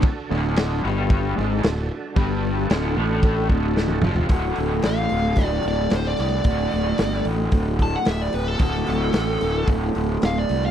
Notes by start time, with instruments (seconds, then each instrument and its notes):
0.02 tonewheel organ D4 F#4 A4, kick, crash
0.30 fingered electric bass D1, overdriven electric guitar D2 D3
0.56 snare, crash
0.83 fingered electric bass G1, overdriven electric guitar G2 G3
1.10 kick, crash
1.36 fingered electric bass G#1, overdriven electric guitar G#2 G#3
1.63 fingered electric bass D1, overdriven electric guitar D2, snare, crash
2.16 fingered electric bass G1, overdriven electric guitar G2 G3, kick, crash
2.70 fingered electric bass D1, overdriven electric guitar D2 D3, snare, crash
2.96 fingered electric bass A1, overdriven electric guitar A2 A3
3.23 kick, crash
3.49 fingered electric bass D1, overdriven electric guitar D2 D3, kick
3.77 snare
3.88 high tom
4.02 fingered electric bass F1, overdriven electric guitar F2 F3, mid tom
4.16 floor tom
4.29 fingered electric bass D1, overdriven electric guitar D2 A2 D3 A3 F#4, kick, open hi-hat
4.56 fingered electric bass D1, open hi-hat
4.82 fingered electric bass A1, lead electric guitar F5, snare, open hi-hat
5.09 fingered electric bass D1, open hi-hat
5.36 fingered electric bass D1, kick, open hi-hat
5.46 lead electric guitar D5
5.63 fingered electric bass D1, open hi-hat
5.68 lead electric guitar D5
5.90 fingered electric bass D1, snare, open hi-hat
5.96 lead electric guitar C5
6.07 lead electric guitar D5
6.17 fingered electric bass C2, lead electric guitar D5, open hi-hat
6.44 fingered electric bass D1, overdriven electric guitar D2 A2 D3 A3 F#4, kick, open hi-hat
6.71 fingered electric bass D1, open hi-hat
6.98 fingered electric bass G1, snare, open hi-hat
7.25 fingered electric bass A1, open hi-hat
7.52 fingered electric bass D1, kick, open hi-hat
7.79 lead electric guitar A5, kick, open hi-hat
7.96 lead electric guitar F#5
8.05 fingered electric bass D1, lead electric guitar E5, snare, open hi-hat
8.22 lead electric guitar D5
8.33 fingered electric bass D1, lead electric guitar B4, open hi-hat
8.48 lead electric guitar A4
8.59 fingered electric bass D1, overdriven electric guitar D2 A2 D3 A3 F#4, lead electric guitar A4, kick, open hi-hat
8.87 fingered electric bass D1, open hi-hat
9.13 fingered electric bass A1, snare, open hi-hat
9.41 fingered electric bass D1, open hi-hat
9.67 fingered electric bass D1, kick, open hi-hat
9.95 fingered electric bass D1, open hi-hat
10.22 fingered electric bass D1, lead electric guitar F5, snare, open hi-hat
10.39 lead electric guitar D5
10.49 fingered electric bass C2, open hi-hat
10.66 lead electric guitar F5